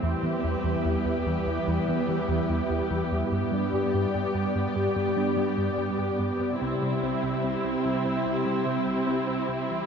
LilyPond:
<<
  \new Staff \with { instrumentName = "Analog synth pad" } { \time 4/4 \key e \minor \tempo 4 = 73 <g e' b' e''>1 | <g b g' d''>1 | <g c' g' e''>1 | }
  \new Staff \with { instrumentName = "Viola section" } { \time 4/4 \key e \minor << { g'1 | g'1 | e'1 | } \\ { c'4 b2. | b1 | c'1 | } >> }
  \new Staff \with { instrumentName = "Synth pluck" } { \time 4/4 \key e \minor e16 b16 e'16 e16 e'16 e'16 e16 e'16 e16 b16 b16 e16 e'16 e'16 e16 g16 | g16 d'16 g'16 g16 g'16 g'16 g16 g'16 g16 d'16 d'16 g16 g'16 g'16 g16 b16 | c16 g16 c'16 c16 c'16 c'16 c16 c'16 c16 g16 g16 c16 c'16 c'16 c16 e16 | }
  \new Staff \with { instrumentName = "Cello section" } { \clef bass \time 4/4 \key e \minor e,1 | g,1 | c1 | }
  \new Staff \with { instrumentName = "Analog synth bass" } { \clef bass \time 4/4 \key e \minor e,16 e16 e,16 e,16 e,16 e,16 e,16 e,16 e,16 e16 e16 e,16 e,16 e,16 e,16 e,16 | g,16 g16 g,16 g,16 g,16 g,16 g,16 g,16 g,16 g16 g16 g,16 g,16 g,16 g,16 g,16 | c,16 c16 c,16 c,16 c,16 c,16 c,16 c,16 c,16 c16 c16 c,16 c,16 c,16 c,16 c,16 | }
>>